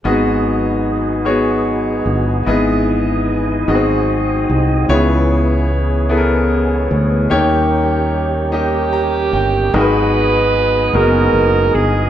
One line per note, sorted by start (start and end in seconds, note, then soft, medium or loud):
0.03 2.03 G#1 medium
0.03 1.22 G#2 medium
0.03 2.45 F#3 soft
0.03 4.85 G#3 soft
0.03 0.88 B3 medium
0.03 3.65 B3 soft
0.03 2.45 D#4 soft
0.03 2.45 F#4 medium
0.03 0.89 F#4 medium
0.03 7.26 G#4 soft
0.03 3.64 G#4 soft
0.03 0.89 G#4 medium
0.03 3.64 B4 soft
0.03 0.89 D#5 medium
0.03 4.85 D#5 medium
1.25 2.10 B3 medium
1.25 2.09 F#4 medium
1.25 2.10 G#4 soft
1.25 2.10 C#5 medium
2.06 2.43 G1 medium
2.45 3.64 G#1 medium
2.45 3.64 G#2 soft
2.45 3.66 E3 soft
2.45 3.30 B3 medium
2.45 3.30 E4 medium
2.45 3.68 E4 soft
2.45 3.31 G#4 medium
2.45 4.86 D#5 soft
2.45 3.31 D#5 medium
3.67 4.45 G#1 medium
3.67 4.85 G#2 medium
3.67 4.89 F#3 soft
3.67 3.75 B3 soft
3.67 4.89 C4 soft
3.67 4.52 F#4 soft
3.67 4.89 F#4 medium
3.67 4.52 G#4 soft
3.67 4.89 G#4 soft
3.67 4.89 C5 soft
3.67 4.52 D#5 medium
3.75 4.55 C4 medium
4.50 4.86 C2 medium
4.87 6.87 C#2 medium
4.87 6.06 C#3 soft
4.87 7.29 G#3 soft
4.87 7.28 B3 soft
4.87 5.73 B3 medium
4.87 7.28 E4 medium
4.87 5.73 E4 medium
4.87 5.73 G#4 medium
4.87 7.29 G#4 medium
4.87 9.58 C#5 medium
4.87 5.73 C#5 medium
4.91 7.30 E3 soft
4.91 7.30 B3 soft
4.91 9.70 C#4 soft
6.09 6.93 B3 medium
6.09 6.93 E4 soft
6.09 6.94 G#4 medium
6.09 6.17 A4 soft
6.17 6.97 A#4 medium
6.91 7.28 D2 medium
7.30 9.29 D#2 medium
7.30 8.47 D#3 medium
7.30 9.72 D#3 soft
7.30 9.71 G3 soft
7.30 8.14 A#3 medium
7.30 9.72 A#3 soft
7.30 8.14 D#4 medium
7.30 9.58 D#4 medium
7.30 8.14 G4 medium
7.30 9.58 G4 soft
7.30 9.72 G4 medium
7.30 9.58 A#4 soft
7.30 8.15 C#5 medium
8.52 9.35 A#3 medium
8.52 9.36 D#4 medium
8.52 9.36 G4 soft
8.52 9.76 G4 medium
8.52 9.36 D#5 medium
8.93 9.30 A#5 soft
9.33 9.70 G1 medium
9.33 9.71 G5 soft
9.74 10.90 G#1 medium
9.74 10.91 G#2 soft
9.74 12.10 F#3 soft
9.74 10.57 G#3 medium
9.74 12.10 G#3 soft
9.74 12.10 B3 soft
9.74 12.10 B3 medium
9.74 10.57 D#4 medium
9.74 10.57 F#4 medium
9.74 12.10 F#4 medium
9.74 12.10 G#4 medium
9.74 12.10 G#4 soft
9.74 9.80 A#4 medium
9.74 10.97 B4 medium
9.74 12.10 D#5 soft
9.74 12.10 D#5 medium
9.81 10.60 B4 medium
10.93 11.31 F#1 medium
10.93 11.77 G#3 medium
10.93 11.78 D#4 soft
10.93 11.78 F#4 soft
10.93 11.01 A#4 soft
10.93 11.76 A#4 medium
11.01 11.81 B3 medium
11.33 11.70 F#1 medium
11.75 12.10 G1 medium
11.75 12.10 G#4 medium